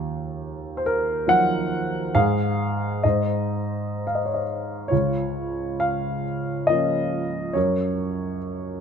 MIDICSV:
0, 0, Header, 1, 2, 480
1, 0, Start_track
1, 0, Key_signature, -5, "major"
1, 0, Tempo, 870827
1, 1182, Time_signature, 3, 2, 24, 8
1, 1674, Tempo, 928793
1, 3114, Tempo, 862069
1, 4774, End_track
2, 0, Start_track
2, 0, Title_t, "Grand piano"
2, 0, Program_c, 0, 0
2, 0, Control_c, 0, 64, 127
2, 0, Note_on_c, 0, 39, 57
2, 426, Note_on_c, 0, 72, 64
2, 464, Note_off_c, 0, 72, 0
2, 475, Note_on_c, 0, 70, 75
2, 699, Note_on_c, 0, 54, 45
2, 700, Note_on_c, 0, 63, 43
2, 702, Note_on_c, 0, 53, 47
2, 711, Note_on_c, 0, 78, 101
2, 715, Note_off_c, 0, 70, 0
2, 1159, Note_off_c, 0, 39, 0
2, 1166, Note_off_c, 0, 54, 0
2, 1166, Note_off_c, 0, 63, 0
2, 1167, Note_off_c, 0, 53, 0
2, 1183, Note_on_c, 0, 77, 88
2, 1184, Note_on_c, 0, 44, 60
2, 1188, Control_c, 0, 64, 0
2, 1193, Note_on_c, 0, 68, 63
2, 1200, Note_off_c, 0, 78, 0
2, 1297, Control_c, 0, 64, 127
2, 1657, Note_off_c, 0, 68, 0
2, 1659, Note_off_c, 0, 44, 0
2, 1673, Note_on_c, 0, 75, 66
2, 1678, Note_on_c, 0, 44, 50
2, 1680, Control_c, 0, 64, 0
2, 1683, Note_on_c, 0, 72, 47
2, 1688, Note_off_c, 0, 77, 0
2, 1757, Control_c, 0, 64, 127
2, 2186, Note_off_c, 0, 75, 0
2, 2208, Note_on_c, 0, 77, 59
2, 2250, Note_on_c, 0, 75, 50
2, 2258, Note_off_c, 0, 77, 0
2, 2304, Note_off_c, 0, 75, 0
2, 2304, Note_on_c, 0, 73, 46
2, 2348, Note_on_c, 0, 75, 44
2, 2355, Note_off_c, 0, 73, 0
2, 2391, Note_off_c, 0, 72, 0
2, 2402, Note_off_c, 0, 75, 0
2, 2627, Note_on_c, 0, 73, 68
2, 2628, Note_off_c, 0, 44, 0
2, 2640, Note_on_c, 0, 65, 47
2, 2647, Note_on_c, 0, 37, 50
2, 2652, Control_c, 0, 64, 0
2, 2743, Control_c, 0, 64, 127
2, 3101, Note_on_c, 0, 77, 74
2, 3120, Note_off_c, 0, 73, 0
2, 3338, Note_off_c, 0, 65, 0
2, 3585, Note_on_c, 0, 75, 79
2, 3600, Note_on_c, 0, 58, 38
2, 3602, Note_on_c, 0, 53, 39
2, 3605, Note_on_c, 0, 61, 44
2, 3613, Note_off_c, 0, 77, 0
2, 4047, Note_off_c, 0, 75, 0
2, 4057, Note_off_c, 0, 37, 0
2, 4062, Note_off_c, 0, 58, 0
2, 4063, Note_off_c, 0, 53, 0
2, 4065, Note_off_c, 0, 61, 0
2, 4066, Note_on_c, 0, 73, 66
2, 4077, Note_on_c, 0, 42, 55
2, 4084, Note_on_c, 0, 70, 46
2, 4085, Control_c, 0, 64, 0
2, 4177, Control_c, 0, 64, 127
2, 4526, Note_off_c, 0, 73, 0
2, 4773, Note_off_c, 0, 70, 0
2, 4774, Note_off_c, 0, 42, 0
2, 4774, End_track
0, 0, End_of_file